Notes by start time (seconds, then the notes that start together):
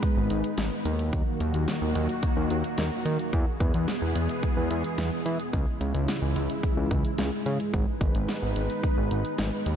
Already playing: G#3 D#4 B4
0.03 kick, closed hi-hat
0.17 G#1
0.30 G#1, closed hi-hat
0.44 closed hi-hat
0.58 G#1, snare, closed hi-hat
0.85 D#2 D#3 A#3 F#4, closed hi-hat
0.99 closed hi-hat
1.13 kick, closed hi-hat
1.40 D#2, closed hi-hat
1.54 D#2, closed hi-hat
1.68 snare, closed hi-hat
1.82 D#2
1.95 D#2, closed hi-hat
2.09 closed hi-hat
2.23 kick, closed hi-hat
2.37 D#2
2.50 D#2, closed hi-hat
2.64 closed hi-hat
2.78 D#2, snare, closed hi-hat
3.05 D#3, closed hi-hat
3.19 closed hi-hat
3.33 E2 E3 B3 G#4, kick, closed hi-hat
3.60 E2, kick, closed hi-hat
3.74 E2, closed hi-hat
3.88 snare, closed hi-hat
4.02 E2
4.16 E2, closed hi-hat
4.29 closed hi-hat
4.43 kick, closed hi-hat
4.57 E2
4.71 E2, closed hi-hat
4.84 closed hi-hat
4.98 E2, snare, closed hi-hat
5.26 E3, closed hi-hat
5.40 closed hi-hat
5.53 C#2 C#3 G#3 E4, kick, closed hi-hat
5.81 C#2, closed hi-hat
5.94 C#2, closed hi-hat
6.08 snare, closed hi-hat
6.22 C#2
6.36 C#2, closed hi-hat
6.50 closed hi-hat
6.63 kick, closed hi-hat
6.77 C#2
6.91 C#2, kick, closed hi-hat
7.05 closed hi-hat
7.18 C#2, snare, closed hi-hat
7.46 C#3, closed hi-hat
7.60 closed hi-hat
7.74 G#1 D#4 B4, kick, closed hi-hat
8.01 G#1, kick, closed hi-hat
8.15 G#1, closed hi-hat
8.29 snare, closed hi-hat
8.42 G#1
8.56 G#1, closed hi-hat
8.70 closed hi-hat
8.83 kick, closed hi-hat
8.97 G#1
9.11 G#1, closed hi-hat
9.25 closed hi-hat
9.38 G#1, snare, closed hi-hat
9.66 D#2 D#3 A#3 F#4, closed hi-hat